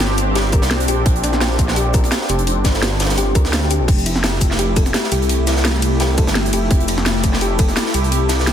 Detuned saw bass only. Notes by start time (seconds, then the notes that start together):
Already playing: G1
0.62 C2
0.88 A#1
1.06 A#1
2.29 F1
2.56 G1
3.35 D2
3.80 A#1
3.88 F1
5.12 C2
5.39 C2
6.27 G1
6.53 F1
6.71 F1
7.94 C2
8.21 C2